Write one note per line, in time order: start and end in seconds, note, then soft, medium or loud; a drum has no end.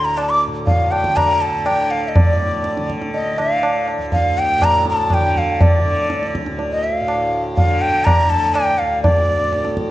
0.00 3.98 D2 medium
0.00 0.47 A2 medium
0.00 1.08 D3 medium
0.05 0.19 A#5 medium
0.17 0.31 A5 medium
0.17 tabla na medium
0.30 0.42 D6 medium
0.47 2.16 A2 soft
0.66 0.93 F5 medium
0.66 tabla tin medium
0.66 tabla ge medium
0.91 1.18 G5 medium
0.91 tabla na medium
1.04 1.69 D3 medium
1.04 tabla ke medium
1.17 1.43 A#5 loud
1.17 tabla na medium
1.17 tabla ge medium
1.41 1.68 A5 medium
1.66 2.78 D3 medium
1.66 1.92 G5 medium
1.66 tabla na medium
1.91 2.10 F5 medium
2.08 2.17 D#5 soft
2.16 4.57 A2 medium
2.16 2.90 D5 medium
2.16 tabla tin loud
2.16 tabla ge medium
2.64 tabla te medium
2.77 3.38 D3 medium
2.77 tabla te medium
2.90 tabla ke medium
3.02 tabla te medium
3.14 3.40 D#5 medium
3.14 tabla tin medium
3.38 5.18 D3 medium
3.38 3.88 F5 medium
3.38 tabla na medium
3.63 tabla na medium
3.88 tabla na medium
3.98 6.40 D2 medium
4.12 4.40 F5 medium
4.12 tabla tin medium
4.12 tabla ge medium
4.38 4.66 G5 medium
4.58 7.00 A2 medium
4.62 4.88 A#5 loud
4.62 tabla na medium
4.62 tabla ge medium
4.85 tabla te medium
4.90 5.15 A5 medium
5.10 5.39 G5 medium
5.10 tabla na medium
5.10 tabla ge medium
5.18 5.79 D3 medium
5.36 5.64 F5 medium
5.36 tabla ge medium
5.61 6.35 D5 medium
5.61 tabla tin loud
5.61 tabla ge medium
5.79 7.61 D3 medium
6.10 tabla te medium
6.23 tabla te medium
6.35 tabla ke medium
6.40 8.80 D2 medium
6.46 tabla te medium
6.59 tabla tin medium
6.72 6.85 D#5 medium
6.84 6.96 E5 medium
6.96 7.45 F5 medium
7.01 9.40 A2 soft
7.08 tabla na medium
7.57 8.21 D3 medium
7.57 7.83 F5 medium
7.57 tabla tin medium
7.57 tabla ge medium
7.81 8.06 G5 medium
8.05 8.31 A#5 loud
8.05 tabla na medium
8.05 tabla ge medium
8.21 9.91 D3 medium
8.30 8.56 A5 loud
8.30 tabla ge medium
8.55 8.80 G5 medium
8.55 tabla na medium
8.78 9.91 D2 medium
8.78 9.02 F5 medium
9.03 9.73 D5 medium
9.03 tabla tin loud
9.03 tabla ge loud
9.41 9.91 A2 medium
9.52 tabla te medium
9.65 tabla te medium
9.77 tabla ke medium